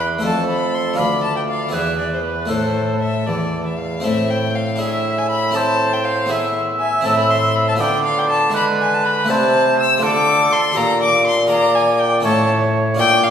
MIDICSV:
0, 0, Header, 1, 5, 480
1, 0, Start_track
1, 0, Tempo, 500000
1, 946, Time_signature, 6, 3, 24, 8
1, 1913, Tempo, 513699
1, 4313, Tempo, 495868
1, 12775, End_track
2, 0, Start_track
2, 0, Title_t, "Violin"
2, 0, Program_c, 0, 40
2, 234, Note_on_c, 0, 81, 71
2, 464, Note_off_c, 0, 81, 0
2, 468, Note_on_c, 0, 83, 70
2, 714, Note_on_c, 0, 84, 68
2, 728, Note_off_c, 0, 83, 0
2, 938, Note_off_c, 0, 84, 0
2, 944, Note_on_c, 0, 83, 75
2, 1181, Note_off_c, 0, 83, 0
2, 1185, Note_on_c, 0, 81, 68
2, 1305, Note_off_c, 0, 81, 0
2, 1310, Note_on_c, 0, 79, 60
2, 1358, Note_off_c, 0, 79, 0
2, 1429, Note_on_c, 0, 77, 65
2, 1666, Note_off_c, 0, 77, 0
2, 1680, Note_on_c, 0, 76, 66
2, 1901, Note_off_c, 0, 76, 0
2, 1907, Note_on_c, 0, 74, 56
2, 2026, Note_off_c, 0, 74, 0
2, 2043, Note_on_c, 0, 72, 54
2, 2140, Note_off_c, 0, 72, 0
2, 2145, Note_on_c, 0, 71, 56
2, 2382, Note_on_c, 0, 72, 63
2, 2396, Note_off_c, 0, 71, 0
2, 2859, Note_off_c, 0, 72, 0
2, 2864, Note_on_c, 0, 76, 65
2, 3106, Note_on_c, 0, 74, 60
2, 3120, Note_off_c, 0, 76, 0
2, 3470, Note_off_c, 0, 74, 0
2, 3475, Note_on_c, 0, 76, 59
2, 3589, Note_on_c, 0, 77, 67
2, 3603, Note_off_c, 0, 76, 0
2, 3825, Note_on_c, 0, 76, 82
2, 3839, Note_off_c, 0, 77, 0
2, 4075, Note_on_c, 0, 79, 81
2, 4089, Note_off_c, 0, 76, 0
2, 4304, Note_on_c, 0, 77, 69
2, 4318, Note_off_c, 0, 79, 0
2, 4534, Note_on_c, 0, 76, 75
2, 4549, Note_off_c, 0, 77, 0
2, 4914, Note_on_c, 0, 80, 81
2, 4929, Note_off_c, 0, 76, 0
2, 5025, Note_off_c, 0, 80, 0
2, 5031, Note_on_c, 0, 83, 86
2, 5267, Note_on_c, 0, 81, 95
2, 5281, Note_off_c, 0, 83, 0
2, 5640, Note_on_c, 0, 79, 79
2, 5654, Note_off_c, 0, 81, 0
2, 5755, Note_on_c, 0, 77, 78
2, 5769, Note_off_c, 0, 79, 0
2, 6000, Note_on_c, 0, 76, 70
2, 6015, Note_off_c, 0, 77, 0
2, 6242, Note_off_c, 0, 76, 0
2, 6479, Note_on_c, 0, 80, 80
2, 6725, Note_on_c, 0, 81, 92
2, 6739, Note_off_c, 0, 80, 0
2, 6846, Note_off_c, 0, 81, 0
2, 6855, Note_on_c, 0, 83, 83
2, 6968, Note_on_c, 0, 84, 87
2, 6983, Note_off_c, 0, 83, 0
2, 7208, Note_on_c, 0, 83, 86
2, 7223, Note_off_c, 0, 84, 0
2, 7328, Note_off_c, 0, 83, 0
2, 7336, Note_on_c, 0, 81, 87
2, 7383, Note_off_c, 0, 81, 0
2, 7453, Note_on_c, 0, 79, 87
2, 7683, Note_off_c, 0, 79, 0
2, 7689, Note_on_c, 0, 77, 82
2, 7824, Note_on_c, 0, 79, 86
2, 7838, Note_off_c, 0, 77, 0
2, 7922, Note_off_c, 0, 79, 0
2, 7927, Note_on_c, 0, 81, 89
2, 8164, Note_off_c, 0, 81, 0
2, 8183, Note_on_c, 0, 83, 97
2, 8261, Note_off_c, 0, 83, 0
2, 8424, Note_on_c, 0, 80, 84
2, 8553, Note_on_c, 0, 81, 85
2, 8567, Note_off_c, 0, 80, 0
2, 8658, Note_on_c, 0, 83, 92
2, 8672, Note_off_c, 0, 81, 0
2, 8895, Note_on_c, 0, 81, 94
2, 8910, Note_off_c, 0, 83, 0
2, 9372, Note_off_c, 0, 81, 0
2, 9380, Note_on_c, 0, 88, 96
2, 9610, Note_off_c, 0, 88, 0
2, 9621, Note_on_c, 0, 86, 107
2, 10087, Note_on_c, 0, 84, 98
2, 10102, Note_off_c, 0, 86, 0
2, 10320, Note_on_c, 0, 82, 100
2, 10334, Note_off_c, 0, 84, 0
2, 10560, Note_off_c, 0, 82, 0
2, 10572, Note_on_c, 0, 86, 97
2, 10801, Note_off_c, 0, 86, 0
2, 10807, Note_on_c, 0, 84, 92
2, 11026, Note_off_c, 0, 84, 0
2, 11032, Note_on_c, 0, 82, 101
2, 11273, Note_on_c, 0, 80, 89
2, 11288, Note_off_c, 0, 82, 0
2, 11508, Note_on_c, 0, 79, 91
2, 11523, Note_off_c, 0, 80, 0
2, 11750, Note_off_c, 0, 79, 0
2, 11754, Note_on_c, 0, 81, 87
2, 11989, Note_off_c, 0, 81, 0
2, 12470, Note_on_c, 0, 79, 116
2, 12709, Note_on_c, 0, 77, 85
2, 12723, Note_off_c, 0, 79, 0
2, 12775, Note_off_c, 0, 77, 0
2, 12775, End_track
3, 0, Start_track
3, 0, Title_t, "Oboe"
3, 0, Program_c, 1, 68
3, 0, Note_on_c, 1, 71, 59
3, 217, Note_off_c, 1, 71, 0
3, 226, Note_on_c, 1, 69, 59
3, 941, Note_on_c, 1, 74, 63
3, 955, Note_off_c, 1, 69, 0
3, 1664, Note_on_c, 1, 71, 55
3, 1678, Note_off_c, 1, 74, 0
3, 2388, Note_off_c, 1, 71, 0
3, 2393, Note_on_c, 1, 69, 49
3, 3457, Note_off_c, 1, 69, 0
3, 4550, Note_on_c, 1, 76, 73
3, 5284, Note_on_c, 1, 72, 73
3, 5298, Note_off_c, 1, 76, 0
3, 6003, Note_off_c, 1, 72, 0
3, 6008, Note_on_c, 1, 76, 90
3, 7454, Note_on_c, 1, 74, 75
3, 7469, Note_off_c, 1, 76, 0
3, 8158, Note_off_c, 1, 74, 0
3, 8164, Note_on_c, 1, 71, 82
3, 8875, Note_off_c, 1, 71, 0
3, 8896, Note_on_c, 1, 72, 86
3, 9608, Note_on_c, 1, 69, 88
3, 9623, Note_off_c, 1, 72, 0
3, 10771, Note_off_c, 1, 69, 0
3, 11043, Note_on_c, 1, 74, 84
3, 11717, Note_off_c, 1, 74, 0
3, 11752, Note_on_c, 1, 73, 82
3, 12475, Note_on_c, 1, 74, 76
3, 12490, Note_off_c, 1, 73, 0
3, 12775, Note_off_c, 1, 74, 0
3, 12775, End_track
4, 0, Start_track
4, 0, Title_t, "Harpsichord"
4, 0, Program_c, 2, 6
4, 0, Note_on_c, 2, 40, 48
4, 0, Note_on_c, 2, 59, 43
4, 0, Note_on_c, 2, 68, 43
4, 0, Note_on_c, 2, 76, 39
4, 178, Note_on_c, 2, 57, 43
4, 183, Note_off_c, 2, 59, 0
4, 189, Note_off_c, 2, 40, 0
4, 190, Note_off_c, 2, 68, 0
4, 192, Note_on_c, 2, 69, 42
4, 198, Note_off_c, 2, 76, 0
4, 208, Note_on_c, 2, 72, 45
4, 221, Note_on_c, 2, 41, 44
4, 896, Note_on_c, 2, 62, 41
4, 898, Note_off_c, 2, 57, 0
4, 903, Note_off_c, 2, 41, 0
4, 905, Note_off_c, 2, 69, 0
4, 913, Note_off_c, 2, 72, 0
4, 915, Note_on_c, 2, 65, 38
4, 928, Note_on_c, 2, 71, 41
4, 942, Note_on_c, 2, 38, 45
4, 1618, Note_on_c, 2, 59, 38
4, 1624, Note_off_c, 2, 62, 0
4, 1631, Note_off_c, 2, 38, 0
4, 1632, Note_on_c, 2, 64, 37
4, 1634, Note_off_c, 2, 65, 0
4, 1641, Note_off_c, 2, 71, 0
4, 1648, Note_on_c, 2, 68, 35
4, 1661, Note_on_c, 2, 40, 42
4, 2343, Note_off_c, 2, 59, 0
4, 2344, Note_on_c, 2, 57, 36
4, 2349, Note_off_c, 2, 40, 0
4, 2350, Note_off_c, 2, 64, 0
4, 2358, Note_off_c, 2, 68, 0
4, 2360, Note_on_c, 2, 64, 33
4, 2373, Note_on_c, 2, 69, 36
4, 2386, Note_on_c, 2, 45, 39
4, 3076, Note_off_c, 2, 45, 0
4, 3113, Note_on_c, 2, 40, 41
4, 3779, Note_off_c, 2, 57, 0
4, 3787, Note_off_c, 2, 64, 0
4, 3790, Note_on_c, 2, 60, 45
4, 3794, Note_off_c, 2, 69, 0
4, 3802, Note_off_c, 2, 40, 0
4, 3803, Note_on_c, 2, 64, 42
4, 3817, Note_on_c, 2, 69, 44
4, 3831, Note_on_c, 2, 45, 53
4, 4503, Note_on_c, 2, 62, 48
4, 4506, Note_off_c, 2, 60, 0
4, 4506, Note_off_c, 2, 64, 0
4, 4518, Note_on_c, 2, 64, 49
4, 4521, Note_off_c, 2, 69, 0
4, 4533, Note_on_c, 2, 68, 47
4, 5228, Note_off_c, 2, 64, 0
4, 5229, Note_on_c, 2, 60, 47
4, 5230, Note_off_c, 2, 62, 0
4, 5239, Note_on_c, 2, 64, 46
4, 5246, Note_off_c, 2, 68, 0
4, 5254, Note_on_c, 2, 69, 45
4, 5955, Note_off_c, 2, 60, 0
4, 5956, Note_on_c, 2, 59, 50
4, 5961, Note_off_c, 2, 64, 0
4, 5968, Note_off_c, 2, 69, 0
4, 5975, Note_on_c, 2, 64, 49
4, 5986, Note_on_c, 2, 68, 50
4, 6681, Note_off_c, 2, 59, 0
4, 6683, Note_off_c, 2, 45, 0
4, 6684, Note_on_c, 2, 60, 48
4, 6686, Note_off_c, 2, 64, 0
4, 6696, Note_off_c, 2, 68, 0
4, 6697, Note_on_c, 2, 64, 49
4, 6716, Note_on_c, 2, 69, 51
4, 6727, Note_on_c, 2, 45, 53
4, 7402, Note_on_c, 2, 59, 51
4, 7405, Note_off_c, 2, 60, 0
4, 7410, Note_off_c, 2, 45, 0
4, 7412, Note_off_c, 2, 64, 0
4, 7414, Note_on_c, 2, 65, 54
4, 7421, Note_off_c, 2, 69, 0
4, 7429, Note_on_c, 2, 71, 54
4, 7444, Note_on_c, 2, 50, 60
4, 8123, Note_on_c, 2, 56, 51
4, 8124, Note_off_c, 2, 59, 0
4, 8131, Note_off_c, 2, 65, 0
4, 8136, Note_on_c, 2, 64, 55
4, 8138, Note_off_c, 2, 71, 0
4, 8152, Note_on_c, 2, 71, 53
4, 8846, Note_off_c, 2, 56, 0
4, 8846, Note_on_c, 2, 57, 55
4, 8848, Note_off_c, 2, 64, 0
4, 8851, Note_off_c, 2, 50, 0
4, 8859, Note_on_c, 2, 64, 58
4, 8861, Note_off_c, 2, 71, 0
4, 8875, Note_on_c, 2, 76, 57
4, 8889, Note_on_c, 2, 48, 62
4, 9546, Note_off_c, 2, 57, 0
4, 9558, Note_on_c, 2, 57, 54
4, 9569, Note_off_c, 2, 48, 0
4, 9571, Note_off_c, 2, 64, 0
4, 9574, Note_on_c, 2, 65, 55
4, 9579, Note_off_c, 2, 76, 0
4, 9588, Note_on_c, 2, 74, 53
4, 9601, Note_on_c, 2, 50, 59
4, 10031, Note_off_c, 2, 50, 0
4, 10275, Note_off_c, 2, 57, 0
4, 10276, Note_on_c, 2, 62, 60
4, 10284, Note_off_c, 2, 65, 0
4, 10288, Note_on_c, 2, 67, 56
4, 10291, Note_off_c, 2, 74, 0
4, 10301, Note_on_c, 2, 74, 57
4, 10319, Note_on_c, 2, 46, 63
4, 10993, Note_off_c, 2, 62, 0
4, 10996, Note_on_c, 2, 65, 55
4, 10999, Note_off_c, 2, 67, 0
4, 11005, Note_off_c, 2, 74, 0
4, 11007, Note_on_c, 2, 68, 55
4, 11021, Note_on_c, 2, 74, 51
4, 11710, Note_off_c, 2, 65, 0
4, 11711, Note_on_c, 2, 61, 60
4, 11713, Note_off_c, 2, 46, 0
4, 11716, Note_off_c, 2, 68, 0
4, 11723, Note_off_c, 2, 74, 0
4, 11724, Note_on_c, 2, 69, 58
4, 11738, Note_on_c, 2, 76, 58
4, 11750, Note_on_c, 2, 45, 58
4, 12428, Note_on_c, 2, 62, 54
4, 12430, Note_off_c, 2, 61, 0
4, 12433, Note_off_c, 2, 45, 0
4, 12437, Note_off_c, 2, 69, 0
4, 12442, Note_on_c, 2, 65, 53
4, 12444, Note_off_c, 2, 76, 0
4, 12456, Note_on_c, 2, 74, 54
4, 12471, Note_on_c, 2, 46, 57
4, 12775, Note_off_c, 2, 46, 0
4, 12775, Note_off_c, 2, 62, 0
4, 12775, Note_off_c, 2, 65, 0
4, 12775, Note_off_c, 2, 74, 0
4, 12775, End_track
5, 0, Start_track
5, 0, Title_t, "Bassoon"
5, 0, Program_c, 3, 70
5, 0, Note_on_c, 3, 40, 60
5, 211, Note_off_c, 3, 40, 0
5, 218, Note_on_c, 3, 41, 57
5, 936, Note_on_c, 3, 38, 55
5, 950, Note_off_c, 3, 41, 0
5, 1656, Note_off_c, 3, 38, 0
5, 1662, Note_on_c, 3, 40, 51
5, 2383, Note_on_c, 3, 45, 52
5, 2397, Note_off_c, 3, 40, 0
5, 3103, Note_off_c, 3, 45, 0
5, 3109, Note_on_c, 3, 40, 49
5, 3822, Note_off_c, 3, 40, 0
5, 3832, Note_on_c, 3, 45, 59
5, 6562, Note_off_c, 3, 45, 0
5, 6727, Note_on_c, 3, 45, 68
5, 7452, Note_on_c, 3, 50, 73
5, 7466, Note_off_c, 3, 45, 0
5, 8888, Note_off_c, 3, 50, 0
5, 8893, Note_on_c, 3, 48, 75
5, 9611, Note_on_c, 3, 50, 79
5, 9626, Note_off_c, 3, 48, 0
5, 10075, Note_off_c, 3, 50, 0
5, 10325, Note_on_c, 3, 46, 82
5, 11752, Note_on_c, 3, 45, 77
5, 11767, Note_off_c, 3, 46, 0
5, 12466, Note_off_c, 3, 45, 0
5, 12472, Note_on_c, 3, 46, 69
5, 12775, Note_off_c, 3, 46, 0
5, 12775, End_track
0, 0, End_of_file